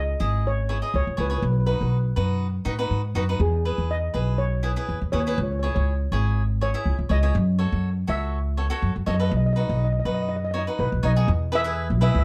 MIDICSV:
0, 0, Header, 1, 4, 480
1, 0, Start_track
1, 0, Key_signature, 4, "major"
1, 0, Tempo, 492207
1, 1394, Time_signature, 4, 2, 24, 8
1, 11939, End_track
2, 0, Start_track
2, 0, Title_t, "Steel pan"
2, 0, Program_c, 0, 114
2, 0, Note_on_c, 0, 75, 89
2, 451, Note_off_c, 0, 75, 0
2, 459, Note_on_c, 0, 73, 80
2, 893, Note_off_c, 0, 73, 0
2, 932, Note_on_c, 0, 73, 83
2, 1170, Note_off_c, 0, 73, 0
2, 1175, Note_on_c, 0, 71, 68
2, 1239, Note_off_c, 0, 71, 0
2, 1256, Note_on_c, 0, 71, 46
2, 1315, Note_off_c, 0, 71, 0
2, 1346, Note_on_c, 0, 71, 50
2, 1392, Note_off_c, 0, 71, 0
2, 1405, Note_on_c, 0, 71, 46
2, 1463, Note_off_c, 0, 71, 0
2, 1479, Note_on_c, 0, 71, 46
2, 1540, Note_off_c, 0, 71, 0
2, 1558, Note_on_c, 0, 71, 41
2, 1609, Note_off_c, 0, 71, 0
2, 1627, Note_on_c, 0, 71, 52
2, 1683, Note_off_c, 0, 71, 0
2, 1695, Note_on_c, 0, 71, 43
2, 1759, Note_off_c, 0, 71, 0
2, 1782, Note_on_c, 0, 71, 56
2, 1833, Note_off_c, 0, 71, 0
2, 3325, Note_on_c, 0, 68, 74
2, 3810, Note_on_c, 0, 75, 82
2, 3816, Note_off_c, 0, 68, 0
2, 4274, Note_on_c, 0, 73, 80
2, 4299, Note_off_c, 0, 75, 0
2, 4982, Note_off_c, 0, 73, 0
2, 4994, Note_on_c, 0, 73, 76
2, 5062, Note_off_c, 0, 73, 0
2, 5073, Note_on_c, 0, 73, 53
2, 5143, Note_off_c, 0, 73, 0
2, 5154, Note_on_c, 0, 73, 50
2, 5201, Note_off_c, 0, 73, 0
2, 5213, Note_on_c, 0, 73, 43
2, 5289, Note_off_c, 0, 73, 0
2, 5300, Note_on_c, 0, 73, 51
2, 5365, Note_off_c, 0, 73, 0
2, 5377, Note_on_c, 0, 73, 43
2, 5441, Note_off_c, 0, 73, 0
2, 5454, Note_on_c, 0, 73, 50
2, 5510, Note_off_c, 0, 73, 0
2, 5522, Note_on_c, 0, 73, 44
2, 5595, Note_off_c, 0, 73, 0
2, 5606, Note_on_c, 0, 73, 57
2, 5668, Note_off_c, 0, 73, 0
2, 6461, Note_on_c, 0, 73, 75
2, 6937, Note_on_c, 0, 75, 90
2, 6947, Note_off_c, 0, 73, 0
2, 7852, Note_off_c, 0, 75, 0
2, 7895, Note_on_c, 0, 76, 93
2, 8843, Note_on_c, 0, 75, 74
2, 8879, Note_off_c, 0, 76, 0
2, 8907, Note_off_c, 0, 75, 0
2, 8919, Note_on_c, 0, 75, 57
2, 8986, Note_off_c, 0, 75, 0
2, 8998, Note_on_c, 0, 75, 61
2, 9057, Note_off_c, 0, 75, 0
2, 9068, Note_on_c, 0, 75, 53
2, 9126, Note_off_c, 0, 75, 0
2, 9137, Note_on_c, 0, 75, 54
2, 9213, Note_off_c, 0, 75, 0
2, 9227, Note_on_c, 0, 75, 51
2, 9281, Note_off_c, 0, 75, 0
2, 9293, Note_on_c, 0, 75, 52
2, 9356, Note_off_c, 0, 75, 0
2, 9368, Note_on_c, 0, 75, 47
2, 9440, Note_off_c, 0, 75, 0
2, 9452, Note_on_c, 0, 75, 50
2, 9513, Note_off_c, 0, 75, 0
2, 9523, Note_on_c, 0, 75, 44
2, 9584, Note_off_c, 0, 75, 0
2, 9601, Note_on_c, 0, 75, 52
2, 9667, Note_off_c, 0, 75, 0
2, 9679, Note_on_c, 0, 75, 46
2, 9739, Note_off_c, 0, 75, 0
2, 9749, Note_on_c, 0, 75, 54
2, 9806, Note_off_c, 0, 75, 0
2, 9824, Note_on_c, 0, 75, 46
2, 9881, Note_off_c, 0, 75, 0
2, 9893, Note_on_c, 0, 75, 51
2, 9956, Note_off_c, 0, 75, 0
2, 9968, Note_on_c, 0, 75, 46
2, 10021, Note_off_c, 0, 75, 0
2, 10033, Note_on_c, 0, 75, 58
2, 10096, Note_off_c, 0, 75, 0
2, 10107, Note_on_c, 0, 75, 49
2, 10174, Note_off_c, 0, 75, 0
2, 10186, Note_on_c, 0, 75, 61
2, 10240, Note_off_c, 0, 75, 0
2, 10251, Note_on_c, 0, 75, 54
2, 10313, Note_off_c, 0, 75, 0
2, 10325, Note_on_c, 0, 75, 65
2, 10397, Note_off_c, 0, 75, 0
2, 10530, Note_on_c, 0, 71, 73
2, 10772, Note_off_c, 0, 71, 0
2, 10780, Note_on_c, 0, 75, 76
2, 11263, Note_off_c, 0, 75, 0
2, 11267, Note_on_c, 0, 76, 92
2, 11721, Note_off_c, 0, 76, 0
2, 11732, Note_on_c, 0, 76, 87
2, 11801, Note_off_c, 0, 76, 0
2, 11812, Note_on_c, 0, 76, 61
2, 11874, Note_off_c, 0, 76, 0
2, 11886, Note_on_c, 0, 76, 68
2, 11938, Note_off_c, 0, 76, 0
2, 11939, End_track
3, 0, Start_track
3, 0, Title_t, "Cavaquinho"
3, 0, Program_c, 1, 24
3, 193, Note_on_c, 1, 64, 63
3, 198, Note_on_c, 1, 68, 48
3, 200, Note_on_c, 1, 75, 70
3, 486, Note_off_c, 1, 64, 0
3, 486, Note_off_c, 1, 68, 0
3, 488, Note_off_c, 1, 75, 0
3, 673, Note_on_c, 1, 73, 73
3, 675, Note_on_c, 1, 68, 55
3, 682, Note_on_c, 1, 64, 57
3, 751, Note_off_c, 1, 64, 0
3, 751, Note_off_c, 1, 68, 0
3, 753, Note_off_c, 1, 73, 0
3, 798, Note_on_c, 1, 75, 75
3, 802, Note_on_c, 1, 68, 51
3, 810, Note_on_c, 1, 64, 55
3, 1015, Note_off_c, 1, 68, 0
3, 1016, Note_off_c, 1, 64, 0
3, 1016, Note_off_c, 1, 75, 0
3, 1141, Note_on_c, 1, 73, 77
3, 1147, Note_on_c, 1, 68, 59
3, 1152, Note_on_c, 1, 64, 51
3, 1226, Note_off_c, 1, 64, 0
3, 1226, Note_off_c, 1, 68, 0
3, 1227, Note_off_c, 1, 73, 0
3, 1265, Note_on_c, 1, 73, 73
3, 1272, Note_on_c, 1, 68, 53
3, 1279, Note_on_c, 1, 64, 54
3, 1387, Note_off_c, 1, 64, 0
3, 1387, Note_off_c, 1, 68, 0
3, 1387, Note_off_c, 1, 73, 0
3, 1622, Note_on_c, 1, 71, 67
3, 1626, Note_on_c, 1, 66, 53
3, 1627, Note_on_c, 1, 63, 60
3, 1920, Note_off_c, 1, 63, 0
3, 1920, Note_off_c, 1, 66, 0
3, 1921, Note_off_c, 1, 71, 0
3, 2108, Note_on_c, 1, 71, 79
3, 2115, Note_on_c, 1, 63, 61
3, 2115, Note_on_c, 1, 66, 65
3, 2404, Note_off_c, 1, 63, 0
3, 2404, Note_off_c, 1, 71, 0
3, 2405, Note_off_c, 1, 66, 0
3, 2584, Note_on_c, 1, 63, 79
3, 2590, Note_on_c, 1, 66, 60
3, 2590, Note_on_c, 1, 71, 81
3, 2668, Note_off_c, 1, 63, 0
3, 2669, Note_off_c, 1, 66, 0
3, 2670, Note_off_c, 1, 71, 0
3, 2717, Note_on_c, 1, 71, 76
3, 2720, Note_on_c, 1, 66, 69
3, 2724, Note_on_c, 1, 63, 64
3, 2935, Note_off_c, 1, 63, 0
3, 2935, Note_off_c, 1, 66, 0
3, 2936, Note_off_c, 1, 71, 0
3, 3074, Note_on_c, 1, 63, 76
3, 3075, Note_on_c, 1, 66, 66
3, 3083, Note_on_c, 1, 71, 66
3, 3152, Note_off_c, 1, 63, 0
3, 3155, Note_off_c, 1, 66, 0
3, 3155, Note_off_c, 1, 71, 0
3, 3208, Note_on_c, 1, 71, 67
3, 3212, Note_on_c, 1, 63, 56
3, 3218, Note_on_c, 1, 66, 51
3, 3318, Note_off_c, 1, 66, 0
3, 3319, Note_off_c, 1, 63, 0
3, 3319, Note_off_c, 1, 71, 0
3, 3562, Note_on_c, 1, 71, 68
3, 3566, Note_on_c, 1, 68, 54
3, 3567, Note_on_c, 1, 64, 50
3, 3851, Note_off_c, 1, 64, 0
3, 3853, Note_off_c, 1, 68, 0
3, 3853, Note_off_c, 1, 71, 0
3, 4034, Note_on_c, 1, 71, 69
3, 4038, Note_on_c, 1, 68, 54
3, 4045, Note_on_c, 1, 64, 52
3, 4329, Note_off_c, 1, 64, 0
3, 4329, Note_off_c, 1, 68, 0
3, 4330, Note_off_c, 1, 71, 0
3, 4514, Note_on_c, 1, 64, 64
3, 4520, Note_on_c, 1, 68, 57
3, 4523, Note_on_c, 1, 71, 57
3, 4595, Note_off_c, 1, 64, 0
3, 4597, Note_off_c, 1, 68, 0
3, 4597, Note_off_c, 1, 71, 0
3, 4645, Note_on_c, 1, 64, 63
3, 4650, Note_on_c, 1, 71, 71
3, 4652, Note_on_c, 1, 68, 52
3, 4861, Note_off_c, 1, 64, 0
3, 4863, Note_off_c, 1, 68, 0
3, 4864, Note_off_c, 1, 71, 0
3, 5000, Note_on_c, 1, 64, 65
3, 5004, Note_on_c, 1, 68, 59
3, 5007, Note_on_c, 1, 71, 60
3, 5078, Note_off_c, 1, 64, 0
3, 5080, Note_off_c, 1, 68, 0
3, 5080, Note_off_c, 1, 71, 0
3, 5136, Note_on_c, 1, 64, 62
3, 5142, Note_on_c, 1, 68, 55
3, 5143, Note_on_c, 1, 71, 70
3, 5244, Note_off_c, 1, 64, 0
3, 5245, Note_off_c, 1, 68, 0
3, 5247, Note_off_c, 1, 71, 0
3, 5488, Note_on_c, 1, 73, 76
3, 5495, Note_on_c, 1, 68, 53
3, 5500, Note_on_c, 1, 64, 61
3, 5779, Note_off_c, 1, 64, 0
3, 5779, Note_off_c, 1, 68, 0
3, 5779, Note_off_c, 1, 73, 0
3, 5968, Note_on_c, 1, 73, 83
3, 5977, Note_on_c, 1, 68, 69
3, 5979, Note_on_c, 1, 64, 62
3, 6259, Note_off_c, 1, 64, 0
3, 6259, Note_off_c, 1, 73, 0
3, 6260, Note_off_c, 1, 68, 0
3, 6449, Note_on_c, 1, 73, 72
3, 6452, Note_on_c, 1, 68, 55
3, 6458, Note_on_c, 1, 64, 58
3, 6524, Note_off_c, 1, 68, 0
3, 6525, Note_off_c, 1, 64, 0
3, 6525, Note_off_c, 1, 73, 0
3, 6573, Note_on_c, 1, 64, 68
3, 6577, Note_on_c, 1, 68, 53
3, 6579, Note_on_c, 1, 76, 74
3, 6787, Note_off_c, 1, 68, 0
3, 6788, Note_off_c, 1, 64, 0
3, 6790, Note_off_c, 1, 76, 0
3, 6917, Note_on_c, 1, 73, 68
3, 6922, Note_on_c, 1, 68, 54
3, 6932, Note_on_c, 1, 64, 62
3, 6999, Note_off_c, 1, 68, 0
3, 6999, Note_off_c, 1, 73, 0
3, 7000, Note_off_c, 1, 64, 0
3, 7049, Note_on_c, 1, 64, 65
3, 7052, Note_on_c, 1, 68, 51
3, 7052, Note_on_c, 1, 73, 68
3, 7161, Note_off_c, 1, 68, 0
3, 7162, Note_off_c, 1, 64, 0
3, 7163, Note_off_c, 1, 73, 0
3, 7398, Note_on_c, 1, 73, 67
3, 7403, Note_on_c, 1, 69, 50
3, 7407, Note_on_c, 1, 66, 54
3, 7694, Note_off_c, 1, 66, 0
3, 7695, Note_off_c, 1, 69, 0
3, 7695, Note_off_c, 1, 73, 0
3, 7874, Note_on_c, 1, 66, 62
3, 7878, Note_on_c, 1, 69, 52
3, 7879, Note_on_c, 1, 73, 68
3, 8171, Note_off_c, 1, 69, 0
3, 8172, Note_off_c, 1, 66, 0
3, 8174, Note_off_c, 1, 73, 0
3, 8361, Note_on_c, 1, 73, 68
3, 8365, Note_on_c, 1, 69, 54
3, 8368, Note_on_c, 1, 66, 59
3, 8441, Note_off_c, 1, 66, 0
3, 8441, Note_off_c, 1, 69, 0
3, 8442, Note_off_c, 1, 73, 0
3, 8483, Note_on_c, 1, 66, 78
3, 8490, Note_on_c, 1, 69, 70
3, 8492, Note_on_c, 1, 73, 79
3, 8704, Note_off_c, 1, 66, 0
3, 8706, Note_off_c, 1, 73, 0
3, 8707, Note_off_c, 1, 69, 0
3, 8838, Note_on_c, 1, 73, 72
3, 8845, Note_on_c, 1, 69, 57
3, 8850, Note_on_c, 1, 66, 60
3, 8921, Note_off_c, 1, 66, 0
3, 8922, Note_off_c, 1, 69, 0
3, 8922, Note_off_c, 1, 73, 0
3, 8967, Note_on_c, 1, 71, 74
3, 8972, Note_on_c, 1, 69, 55
3, 8982, Note_on_c, 1, 66, 53
3, 9083, Note_off_c, 1, 66, 0
3, 9083, Note_off_c, 1, 69, 0
3, 9084, Note_off_c, 1, 71, 0
3, 9322, Note_on_c, 1, 71, 70
3, 9330, Note_on_c, 1, 63, 59
3, 9336, Note_on_c, 1, 66, 53
3, 9617, Note_off_c, 1, 66, 0
3, 9617, Note_off_c, 1, 71, 0
3, 9618, Note_off_c, 1, 63, 0
3, 9803, Note_on_c, 1, 71, 70
3, 9807, Note_on_c, 1, 66, 55
3, 9814, Note_on_c, 1, 63, 54
3, 10097, Note_off_c, 1, 63, 0
3, 10097, Note_off_c, 1, 66, 0
3, 10097, Note_off_c, 1, 71, 0
3, 10275, Note_on_c, 1, 73, 70
3, 10279, Note_on_c, 1, 66, 55
3, 10284, Note_on_c, 1, 63, 49
3, 10357, Note_off_c, 1, 63, 0
3, 10358, Note_off_c, 1, 66, 0
3, 10358, Note_off_c, 1, 73, 0
3, 10407, Note_on_c, 1, 71, 66
3, 10413, Note_on_c, 1, 63, 57
3, 10419, Note_on_c, 1, 66, 54
3, 10624, Note_off_c, 1, 66, 0
3, 10624, Note_off_c, 1, 71, 0
3, 10625, Note_off_c, 1, 63, 0
3, 10754, Note_on_c, 1, 73, 85
3, 10758, Note_on_c, 1, 63, 78
3, 10760, Note_on_c, 1, 66, 57
3, 10835, Note_off_c, 1, 66, 0
3, 10836, Note_off_c, 1, 63, 0
3, 10836, Note_off_c, 1, 73, 0
3, 10887, Note_on_c, 1, 68, 88
3, 10893, Note_on_c, 1, 63, 68
3, 10896, Note_on_c, 1, 66, 66
3, 11000, Note_off_c, 1, 66, 0
3, 11001, Note_off_c, 1, 63, 0
3, 11001, Note_off_c, 1, 68, 0
3, 11233, Note_on_c, 1, 71, 78
3, 11239, Note_on_c, 1, 68, 66
3, 11243, Note_on_c, 1, 64, 60
3, 11315, Note_off_c, 1, 71, 0
3, 11316, Note_off_c, 1, 64, 0
3, 11316, Note_off_c, 1, 68, 0
3, 11354, Note_on_c, 1, 64, 66
3, 11360, Note_on_c, 1, 68, 50
3, 11360, Note_on_c, 1, 71, 76
3, 11575, Note_off_c, 1, 64, 0
3, 11576, Note_off_c, 1, 68, 0
3, 11577, Note_off_c, 1, 71, 0
3, 11711, Note_on_c, 1, 71, 79
3, 11718, Note_on_c, 1, 64, 70
3, 11719, Note_on_c, 1, 68, 65
3, 11939, Note_off_c, 1, 64, 0
3, 11939, Note_off_c, 1, 68, 0
3, 11939, Note_off_c, 1, 71, 0
3, 11939, End_track
4, 0, Start_track
4, 0, Title_t, "Upright bass"
4, 0, Program_c, 2, 32
4, 0, Note_on_c, 2, 37, 78
4, 130, Note_off_c, 2, 37, 0
4, 198, Note_on_c, 2, 32, 75
4, 785, Note_off_c, 2, 32, 0
4, 915, Note_on_c, 2, 37, 79
4, 1020, Note_off_c, 2, 37, 0
4, 1045, Note_on_c, 2, 37, 71
4, 1134, Note_off_c, 2, 37, 0
4, 1151, Note_on_c, 2, 37, 84
4, 1348, Note_off_c, 2, 37, 0
4, 1387, Note_on_c, 2, 35, 90
4, 1692, Note_off_c, 2, 35, 0
4, 1762, Note_on_c, 2, 35, 80
4, 2050, Note_off_c, 2, 35, 0
4, 2114, Note_on_c, 2, 42, 71
4, 2507, Note_off_c, 2, 42, 0
4, 2588, Note_on_c, 2, 45, 70
4, 2808, Note_off_c, 2, 45, 0
4, 2832, Note_on_c, 2, 44, 72
4, 3050, Note_off_c, 2, 44, 0
4, 3069, Note_on_c, 2, 42, 74
4, 3288, Note_off_c, 2, 42, 0
4, 3312, Note_on_c, 2, 40, 93
4, 3617, Note_off_c, 2, 40, 0
4, 3687, Note_on_c, 2, 40, 78
4, 3974, Note_off_c, 2, 40, 0
4, 4041, Note_on_c, 2, 35, 73
4, 4630, Note_off_c, 2, 35, 0
4, 4764, Note_on_c, 2, 40, 77
4, 4868, Note_off_c, 2, 40, 0
4, 4890, Note_on_c, 2, 40, 73
4, 4980, Note_off_c, 2, 40, 0
4, 5002, Note_on_c, 2, 39, 84
4, 5198, Note_off_c, 2, 39, 0
4, 5245, Note_on_c, 2, 37, 96
4, 5546, Note_off_c, 2, 37, 0
4, 5614, Note_on_c, 2, 37, 85
4, 5899, Note_off_c, 2, 37, 0
4, 5965, Note_on_c, 2, 32, 75
4, 6554, Note_off_c, 2, 32, 0
4, 6685, Note_on_c, 2, 37, 78
4, 6790, Note_off_c, 2, 37, 0
4, 6813, Note_on_c, 2, 37, 73
4, 6903, Note_off_c, 2, 37, 0
4, 6923, Note_on_c, 2, 37, 88
4, 7120, Note_off_c, 2, 37, 0
4, 7167, Note_on_c, 2, 42, 99
4, 7468, Note_off_c, 2, 42, 0
4, 7532, Note_on_c, 2, 42, 83
4, 7820, Note_off_c, 2, 42, 0
4, 7884, Note_on_c, 2, 37, 78
4, 8474, Note_off_c, 2, 37, 0
4, 8605, Note_on_c, 2, 42, 84
4, 8711, Note_off_c, 2, 42, 0
4, 8735, Note_on_c, 2, 42, 72
4, 8825, Note_off_c, 2, 42, 0
4, 8844, Note_on_c, 2, 42, 88
4, 9041, Note_off_c, 2, 42, 0
4, 9083, Note_on_c, 2, 35, 94
4, 9386, Note_off_c, 2, 35, 0
4, 9453, Note_on_c, 2, 35, 84
4, 9740, Note_off_c, 2, 35, 0
4, 9801, Note_on_c, 2, 42, 69
4, 10390, Note_off_c, 2, 42, 0
4, 10521, Note_on_c, 2, 35, 76
4, 10627, Note_off_c, 2, 35, 0
4, 10651, Note_on_c, 2, 35, 79
4, 10741, Note_off_c, 2, 35, 0
4, 10760, Note_on_c, 2, 35, 86
4, 10956, Note_off_c, 2, 35, 0
4, 10999, Note_on_c, 2, 40, 93
4, 11605, Note_on_c, 2, 35, 81
4, 11620, Note_off_c, 2, 40, 0
4, 11801, Note_off_c, 2, 35, 0
4, 11843, Note_on_c, 2, 37, 88
4, 11939, Note_off_c, 2, 37, 0
4, 11939, End_track
0, 0, End_of_file